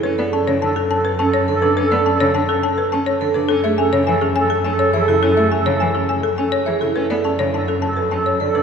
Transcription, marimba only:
X:1
M:3/4
L:1/16
Q:1/4=104
K:F#m
V:1 name="Marimba"
B d a c a A a B a c z B | B d a c a A a B a c z B | A e g c g G g A g c e A | A e g c g G g A g c e A |
B d a c a A a B a c d B |]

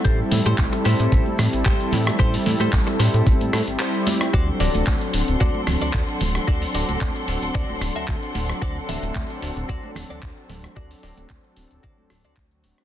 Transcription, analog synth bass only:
X:1
M:4/4
L:1/16
Q:"Swing 16ths" 1/4=112
K:Dmix
V:1 name="Analog synth bass" clef=bass
A,,, z A,, A,, A,,, z A,, A,, A,,, z A,, A,,, A,,, z A,, z | A,,, z A,, A,, A,,, z A,, A,, A,,, A,, A,, A,,, z4 | D,, z D,,, D,,, D,, z D,,, D,,, D,, z D,,, D,, D,, z D,,, z | D,, z D,,, D,,, D,, z D,,, D,,, D,, D,,, D,,, D,, D,, z D,,, z |
D,, z D,,, D,,, D,, z D,,, D,,, D,, z D,,, D,, D,, z D,,, z | D,, z D,,, D,,, D,, z D,,, D,,, D,, D,,, D,,, D,, D,,2 D,,, z |]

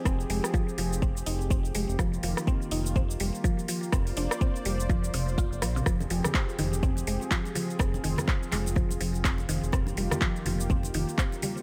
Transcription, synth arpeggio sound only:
X:1
M:4/4
L:1/16
Q:"Swing 16ths" 1/4=124
K:Fdor
V:1 name="Synth arpeggio sound" clef=bass
C z A, z F, z F, z C z E z C z A, z | F, z F, z C z E z C z G, z F, z F, z | C z D z C z G, z F, z C, z F z F, C, | F, z F, z C z E, z C z A, z F, z F, z |
C z E, z C z A, z F, z F, z C z E, z | C z G, z F, z F, z C z E, z C z G, z |]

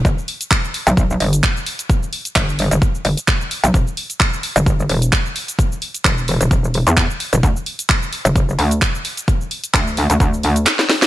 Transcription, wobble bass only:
X:1
M:4/4
L:1/16
Q:"Swing 16ths" 1/4=130
K:G
V:1 name="Wobble bass" clef=bass
G,,, z6 B,,,3 G,,,2 z4 | z4 G,,,3 G,,, z2 G,,, z4 B,,, | E,,, z6 G,,,3 E,,,2 z4 | z4 E,,,3 E,,, E,,,3 E,,2 z2 E,,, |
D,, z6 F,,,3 D,,2 z4 | z4 D,,3 D,, D,,4 z4 |]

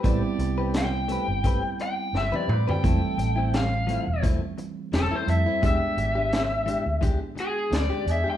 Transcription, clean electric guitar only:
X:1
M:4/4
L:1/16
Q:"Swing 16ths" 1/4=86
K:Am
V:1 name="Clean electric guitar"
[A,CGB] z2 [CGB] z2 [A,CGB] z [A,CGB] z4 [CGB] z [CGB] | [F,A,CE] z2 [A,CE] z2 [F,A,CE] z [F,A,CE] z4 [A,CE] z [A,CE] | [E,^G,D=G] z2 [^G,D=G] z2 [E,^G,D=G] z [E,^G,D=G] z4 [^G,D=G] z [^G,D=G] |]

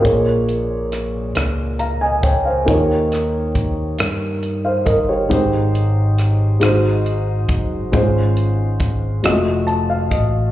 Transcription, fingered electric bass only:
X:1
M:6/8
L:1/8
Q:3/8=46
K:Ab
V:1 name="Fingered electric bass" clef=bass
B,,,3 D,,2 D,, | E,,3 G,,2 G,,, | A,,,3 A,,,2 _G,,, | A,,,3 F,,,2 =A,,, |]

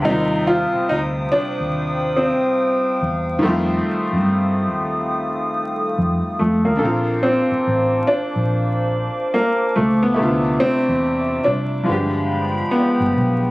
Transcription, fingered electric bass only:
X:1
M:4/4
L:1/16
Q:"Swing 16ths" 1/4=71
K:Fmix
V:1 name="Fingered electric bass" clef=bass
E,,3 z D,,2 z E,,4 z3 =E,,2 | F,,2 z G,,3 E,,4- E,, z F,, z F,, E,, | B,,,3 z A,,,2 z B,,,4 z3 _D,,2 | D,,2 z =E,,3 C,,2 G,,,4 z G,,, =B,,,2 |]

